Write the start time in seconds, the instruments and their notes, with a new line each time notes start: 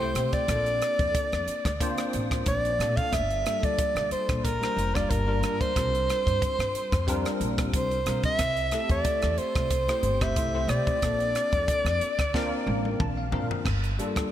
Already playing: upright bass C2, soprano saxophone C5
0.00 tine electric piano A3 C4 E4 G4 C5
0.15 upright bass C3, cross-stick, closed hi-hat
0.33 soprano saxophone D5, muted upright bass stroke, kick, closed hi-hat
0.48 upright bass A#1, tine electric piano A#3 C4 D4 F4 A4, kick, cross-stick, closed hi-hat
0.66 closed hi-hat
0.82 cross-stick, closed hi-hat
0.99 upright bass F2, kick, closed hi-hat
1.14 muted upright bass stroke, kick, closed hi-hat
1.32 upright bass F2, cross-stick, closed hi-hat
1.48 muted upright bass stroke, closed hi-hat
1.65 upright bass D2, kick, cross-stick, closed hi-hat
1.80 tine electric piano A#3 C4 D4 F4 C5, kick, closed hi-hat
1.98 cross-stick, closed hi-hat
2.13 upright bass A1, closed hi-hat
2.31 kick, cross-stick, closed hi-hat
2.46 upright bass A#1, soprano saxophone D5, kick, closed hi-hat
2.65 closed hi-hat
2.79 upright bass A#2, tine electric piano A#3 C4 D4 F4 A4, cross-stick, closed hi-hat
2.96 soprano saxophone F5, muted upright bass stroke, kick, closed hi-hat
3.12 upright bass G1, soprano saxophone E5, kick, cross-stick, closed hi-hat
3.30 closed hi-hat
3.46 tine electric piano G3 A#3 D4 F4 A4, cross-stick, closed hi-hat
3.63 upright bass D2, soprano saxophone D5, kick, closed hi-hat
3.78 muted upright bass stroke, kick, closed hi-hat
3.95 upright bass D2, cross-stick, closed hi-hat
4.11 soprano saxophone C5, muted upright bass stroke, closed hi-hat
4.29 upright bass A#1, kick, cross-stick, closed hi-hat
4.37 soprano saxophone C5
4.43 soprano saxophone A#4, kick, closed hi-hat
4.61 tine electric piano G3 A#3 D4 F4 C5, cross-stick, closed hi-hat
4.77 upright bass F1, closed hi-hat
4.94 tine electric piano G3 A#3 D4 F4 A#4, soprano saxophone D5, kick, cross-stick, closed hi-hat
5.10 upright bass G1, soprano saxophone A#4, kick, closed hi-hat
5.27 tine electric piano G3 A#3 D4 F4 A#4
5.41 upright bass G2, cross-stick, closed hi-hat
5.60 soprano saxophone C5, muted upright bass stroke, kick, closed hi-hat
5.76 upright bass C2, tine electric piano G3 C4 D4 F4 A#4, kick, cross-stick, closed hi-hat
5.95 closed hi-hat
6.10 cross-stick, closed hi-hat
6.27 upright bass G2, kick, closed hi-hat
6.41 muted upright bass stroke, kick, closed hi-hat
6.58 upright bass G2, cross-stick, closed hi-hat
6.74 muted upright bass stroke, closed hi-hat
6.92 upright bass F2, kick, cross-stick, closed hi-hat
7.07 tine electric piano G3 C4 D4 F4 A#4, kick, closed hi-hat
7.25 cross-stick, closed hi-hat
7.40 upright bass A#1, closed hi-hat
7.58 kick, cross-stick, closed hi-hat
7.73 upright bass C2, soprano saxophone C5, kick, closed hi-hat
7.91 closed hi-hat
8.06 upright bass C3, tine electric piano G3 C4 D4 F4 A#4, cross-stick, closed hi-hat
8.23 soprano saxophone E5, muted upright bass stroke, kick, closed hi-hat
8.39 upright bass C2, kick, cross-stick, closed hi-hat
8.57 closed hi-hat
8.71 tine electric piano A3 C4 E4 G4 A4, cross-stick, closed hi-hat
8.89 upright bass E2, soprano saxophone D5, kick, closed hi-hat
9.04 muted upright bass stroke, kick, closed hi-hat
9.22 upright bass E2, cross-stick, closed hi-hat
9.37 soprano saxophone C5, muted upright bass stroke, closed hi-hat
9.55 upright bass C2, kick, cross-stick, closed hi-hat
9.71 kick, closed hi-hat
9.88 tine electric piano A3 C4 E4 G4 C5, cross-stick, closed hi-hat
10.03 upright bass G1, closed hi-hat
10.21 tine electric piano A3 C4 E4 G4 C5, soprano saxophone E5, kick, cross-stick, closed hi-hat
10.36 upright bass C2, kick, closed hi-hat
10.53 tine electric piano A3 C4 E4 G4 C5
10.68 upright bass C3, soprano saxophone D5, cross-stick, closed hi-hat
10.87 muted upright bass stroke, kick, closed hi-hat
11.02 upright bass A#1, tine electric piano A#3 C4 D4 F4 A4, kick, cross-stick, closed hi-hat
11.20 closed hi-hat
11.35 cross-stick, closed hi-hat
11.52 upright bass F2, kick, closed hi-hat
11.68 muted upright bass stroke, kick, closed hi-hat
11.84 upright bass F2, cross-stick, closed hi-hat
12.01 muted upright bass stroke, closed hi-hat
12.18 upright bass D2, kick, cross-stick, closed hi-hat
12.34 tine electric piano A#3 C4 D4 F4 A#4, kick, snare
12.67 upright bass A1, high tom
12.85 high tom
13.00 upright bass A#1, tine electric piano A5, kick, mid tom
13.17 tine electric piano F5
13.31 upright bass A#2, tine electric piano A#3 C4 D4 F4 A#4 F5, floor tom
13.51 muted upright bass stroke, floor tom
13.65 upright bass G1, kick, cross-stick, crash
13.84 closed hi-hat
13.99 tine electric piano G3 A#3 D4 F4 A4, closed hi-hat
14.15 upright bass D2, kick, cross-stick, closed hi-hat